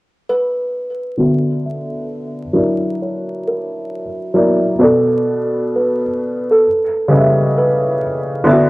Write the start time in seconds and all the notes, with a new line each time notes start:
0.29 B4
1.18 D3 B3 F#4 D5 E5
1.66 E5
2.53 F#3 D4 E4 A#4
3.02 C#5
3.48 A#4
4.34 F#3 E4 A#4 D5
4.79 B2 B3 A4 D5
4.84 A4
5.76 B4
6.51 A4
7.08 C#3 G3 B4 D#5
7.17 E5
7.58 B4
8.44 D3 B3 E4 E5
8.49 F#4 D5